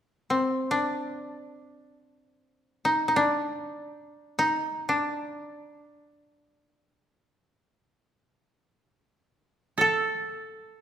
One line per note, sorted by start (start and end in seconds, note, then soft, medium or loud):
0.30 2.90 C4 soft
0.71 2.91 D4 medium
2.85 3.08 D#4 medium
3.08 3.22 D#4 soft
3.16 4.45 D4 medium
4.39 4.95 D#4 medium
4.89 7.31 D4 medium
9.78 10.81 A4 medium